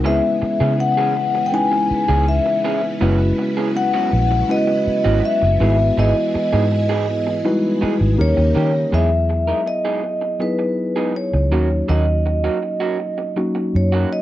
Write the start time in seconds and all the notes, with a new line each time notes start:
0.04 C#2 C#3 E3 G#3 B3 C#4 E4 G#4 B4 E5
0.42 muted clean electric guitar stroke, muted fingered electric bass stroke
0.60 C#3 E3 B3 C#4 G#4
0.79 F#5, muted clean electric guitar stroke
0.97 E3 B3 C#4 G#4
1.16 muted clean electric guitar stroke
1.35 muted clean electric guitar stroke
1.46 G5
1.52 G#3 C#4 D#4 E4 B4 G#5, muted clean electric guitar stroke
1.72 muted clean electric guitar stroke
1.91 muted fingered electric bass stroke
2.08 C#2 E3 B3 C#4 G#4
2.29 E5
2.46 muted clean electric guitar stroke
2.64 E3 B3 C#4 G#4
2.83 muted clean electric guitar stroke
3.01 F#1 E3 F#3 G#3 B3 C#4 E4 F#4 B4
3.38 muted clean electric guitar stroke
3.57 E3 B3 C#4 G#4
3.75 F#5, muted clean electric guitar stroke
3.94 E3 B3 C#4 F#4
4.13 A#1, muted clean electric guitar stroke
4.31 muted clean electric guitar stroke
4.49 G#3 C#4 E4 F#4 B4 D#5, muted clean electric guitar stroke
4.67 muted clean electric guitar stroke
4.87 muted fingered electric bass stroke
5.04 G#1 E3 B3 C#4 F#4
5.23 E5, muted clean electric guitar stroke
5.42 F#1, muted clean electric guitar stroke
5.59 G#1 E3 G3 G#3 B3 D#4 E4 F#4 G#4 B4
5.66 G#3
5.79 muted clean electric guitar stroke
5.98 G#1 E3 B3 D#4 G#4 D#5
6.34 muted clean electric guitar stroke, muted fingered electric bass stroke
6.53 G#2 E3 B3 D#4 G#4
6.71 muted clean electric guitar stroke
6.89 E3 B3 D#4 G#4
7.08 muted clean electric guitar stroke
7.27 muted clean electric guitar stroke
7.44 G3 D#4 E4 F#4 B4, muted clean electric guitar stroke
7.51 G#3
7.81 E3 B3 D#4 G#4, muted fingered electric bass stroke
8.00 G#1, muted clean electric guitar stroke
8.17 D#2 C#3 G3 A#3 C#4 D#4 G4 A#4 C#5
8.37 D#2, muted clean electric guitar stroke
8.55 D#3 A#3 C#4 G4
8.74 muted clean electric guitar stroke
8.91 E2 F#3 G#3 B3 D#4 E4 G#4 E5
9.29 muted clean electric guitar stroke
9.47 G#3 B3 D#4 A#4
9.66 D#5, muted clean electric guitar stroke
9.85 G#3 B3 D#4 G#4
10.03 muted clean electric guitar stroke
10.21 muted clean electric guitar stroke
10.39 F#3 B3 D#4 E4 G#4 B4, muted clean electric guitar stroke
10.59 muted clean electric guitar stroke
10.96 G#3 B3 D#4 G#4
11.15 C#5, muted clean electric guitar stroke
11.33 C#2, muted clean electric guitar stroke
11.51 D#2 F#3 A#3 C#4 D#4 F#4
11.70 muted clean electric guitar stroke
11.88 D#2 F#3 A#3 C#4 F#4 D#5
12.26 muted clean electric guitar stroke
12.44 F#3 A#3 C#4 F#4
12.62 muted clean electric guitar stroke
12.80 F#3 A#3 C#4 F#4
12.99 muted clean electric guitar stroke
13.18 muted clean electric guitar stroke
13.36 F#3 A#3 C#4 D#4 F#4, muted clean electric guitar stroke
13.55 muted clean electric guitar stroke
13.75 F#2 C#5
13.92 F#3 A#3 C#4 F#4
14.13 D#5